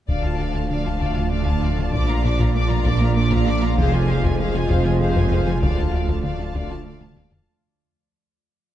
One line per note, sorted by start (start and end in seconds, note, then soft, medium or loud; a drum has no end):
0.08 1.95 D1 medium
0.08 0.18 D2 medium
0.08 0.90 D2 soft
0.08 5.58 F3 soft
0.08 3.74 F3 soft
0.08 1.89 A3 medium
0.08 0.23 D4 soft
0.08 3.74 D4 soft
0.08 5.58 F4 medium
0.08 0.23 D5 soft
0.08 3.74 D5 medium
0.08 0.23 F5 soft
0.08 taiko soft
0.23 0.33 D2 soft
0.23 0.39 F4 soft
0.23 0.39 F5 soft
0.23 0.39 A5 soft
0.39 0.49 D2 soft
0.39 0.55 D4 soft
0.39 0.55 D5 soft
0.39 0.55 F5 soft
0.54 0.64 D2 medium
0.54 0.70 F4 soft
0.54 0.70 F5 soft
0.54 0.70 A5 soft
0.70 0.80 D3 medium
0.70 0.84 D4 soft
0.70 0.85 D5 soft
0.70 0.84 F5 soft
0.84 0.96 D2 soft
0.84 1.00 F4 soft
0.84 1.01 F5 soft
0.84 1.01 A5 soft
1.00 1.82 D2 soft
1.00 1.11 D2 medium
1.00 1.16 D4 soft
1.00 1.16 D5 soft
1.00 1.16 F5 soft
1.15 1.26 D3 medium
1.15 1.31 F4 soft
1.15 1.31 F5 soft
1.15 1.32 A5 soft
1.30 1.41 D3 medium
1.30 1.46 D4 soft
1.30 1.45 D5 soft
1.30 1.47 F5 soft
1.45 1.57 D2 medium
1.45 1.62 F4 soft
1.45 1.62 F5 soft
1.45 1.63 A5 soft
1.45 taiko soft
1.61 1.72 D2 soft
1.61 1.78 D4 soft
1.61 1.77 D5 soft
1.61 1.78 F5 soft
1.77 1.88 D3 soft
1.77 1.93 F4 soft
1.77 1.93 F5 soft
1.77 1.94 A5 soft
1.92 2.74 A#1 medium
1.92 3.79 A#1 medium
1.92 2.75 A#1 medium
1.92 2.74 A#2 medium
1.92 2.03 A#2 medium
1.92 3.78 A#3 medium
1.92 2.08 D4 soft
1.92 2.07 D5 soft
1.92 2.08 D6 soft
1.92 taiko medium
2.08 2.18 A#2 medium
2.08 2.24 F4 soft
2.08 2.24 F5 soft
2.08 2.24 A#5 soft
2.24 2.34 A#2 soft
2.24 2.40 D4 soft
2.24 2.40 D5 soft
2.24 2.39 D6 soft
2.39 2.49 A#2 medium
2.39 2.55 F4 soft
2.39 2.55 F5 soft
2.39 2.55 A#5 soft
2.39 taiko medium
2.56 2.65 A#3 medium
2.56 2.70 D4 soft
2.56 2.70 D5 soft
2.56 2.70 D6 soft
2.70 2.80 A#2 medium
2.70 2.86 F4 soft
2.70 2.86 F5 soft
2.70 2.86 A#5 soft
2.85 3.67 A#1 medium
2.85 3.67 A#2 medium
2.85 2.95 A#2 medium
2.85 3.01 D4 soft
2.85 3.01 D5 medium
2.85 3.01 D6 medium
2.85 taiko medium
3.00 3.11 A#3 medium
3.00 3.17 F4 soft
3.00 3.17 F5 medium
3.00 3.16 A#5 medium
3.16 3.26 A#3 medium
3.16 3.31 D4 soft
3.16 3.31 D5 soft
3.16 3.31 D6 medium
3.31 3.41 A#2 medium
3.31 3.47 F4 medium
3.31 3.47 F5 medium
3.31 3.47 A#5 medium
3.31 taiko medium
3.47 3.57 A#2 medium
3.47 3.63 D4 soft
3.47 3.62 D5 medium
3.47 3.62 D6 medium
3.62 3.72 A#3 medium
3.62 3.78 F4 medium
3.62 3.78 F5 medium
3.62 3.78 A#5 medium
3.78 4.59 F1 medium
3.78 5.64 F1 medium
3.78 4.59 F1 medium
3.78 4.59 F2 medium
3.78 3.87 F2 medium
3.78 5.63 G#3 medium
3.78 5.59 G#3 medium
3.78 7.17 F4 medium
3.78 3.93 G#4 medium
3.78 5.63 C5 medium
3.78 3.93 C5 medium
3.78 3.92 F5 medium
3.78 taiko medium
3.93 4.02 F2 medium
3.93 4.09 F4 medium
3.93 4.10 G#4 medium
3.93 4.09 G#5 medium
4.09 4.18 F2 medium
4.09 4.25 G#4 medium
4.09 4.25 C5 medium
4.09 4.24 F5 medium
4.23 4.33 F2 medium
4.23 4.40 F4 medium
4.23 4.40 G#4 medium
4.23 4.40 G#5 medium
4.23 taiko medium
4.39 4.49 F3 medium
4.39 4.54 G#4 medium
4.39 4.54 C5 soft
4.39 4.54 F5 medium
4.55 4.64 F2 medium
4.55 4.71 F4 medium
4.55 4.71 G#4 medium
4.55 4.70 G#5 medium
4.70 5.52 F1 medium
4.70 5.51 F2 medium
4.70 4.80 F2 medium
4.70 4.86 G#4 medium
4.70 4.86 C5 medium
4.70 4.85 F5 medium
4.70 taiko medium
4.85 4.95 F3 medium
4.85 5.01 F4 medium
4.85 5.02 G#4 medium
4.85 5.01 G#5 medium
5.01 5.10 F3 medium
5.01 5.15 G#4 soft
5.01 5.16 C5 medium
5.01 5.15 F5 medium
5.16 5.26 F2 medium
5.16 5.32 F4 medium
5.16 5.32 G#4 soft
5.16 5.32 G#5 soft
5.16 taiko medium
5.32 5.41 F2 medium
5.32 5.48 G#4 soft
5.32 5.48 C5 soft
5.32 5.47 F5 soft
5.47 5.56 F3 medium
5.47 5.63 F4 soft
5.47 5.63 G#4 soft
5.47 5.63 G#5 soft
5.61 7.47 D1 medium
5.61 6.43 D2 medium
5.61 5.72 D2 medium
5.61 6.44 D2 medium
5.61 7.43 F3 medium
5.61 7.13 A3 medium
5.61 7.47 A3 medium
5.61 5.77 D4 soft
5.61 7.43 F4 medium
5.61 5.77 D5 soft
5.61 7.48 D5 medium
5.61 5.77 F5 soft
5.61 taiko medium
5.77 5.87 D2 medium
5.77 5.93 F4 soft
5.77 5.94 F5 soft
5.77 5.93 A5 soft
5.93 6.03 D2 medium
5.93 6.09 D4 soft
5.93 6.09 D5 soft
5.93 6.08 F5 soft
6.08 6.18 D2 medium
6.08 6.24 F4 soft
6.08 6.24 F5 soft
6.08 6.24 A5 soft
6.08 taiko medium
6.24 6.33 D3 medium
6.24 6.38 D4 soft
6.24 6.39 D5 soft
6.24 6.38 F5 soft
6.39 6.49 D2 medium
6.39 6.55 F4 soft
6.39 6.56 F5 soft
6.39 6.55 A5 soft
6.54 7.36 D2 medium
6.54 6.64 D2 medium
6.54 7.36 D2 medium
6.54 6.70 D4 soft
6.54 6.71 D5 soft
6.54 6.71 F5 soft
6.54 taiko medium
6.70 6.80 D3 medium
6.70 6.86 F4 soft
6.70 6.86 F5 soft
6.70 6.86 A5 soft
6.86 6.95 D3 medium
6.86 7.00 D4 soft
6.86 7.00 D5 soft
6.86 7.00 F5 soft
7.01 7.10 D2 medium
7.01 7.17 F4 soft
7.01 7.16 F5 soft
7.01 7.17 A5 soft
7.01 taiko mid medium
7.16 7.26 D2 medium
7.16 7.32 D4 soft
7.16 7.32 D5 soft
7.16 7.32 F5 soft
7.16 taiko high medium
7.31 7.41 D3 medium
7.31 7.47 F4 soft
7.31 7.47 F5 soft
7.31 7.47 A5 soft
7.31 taiko low medium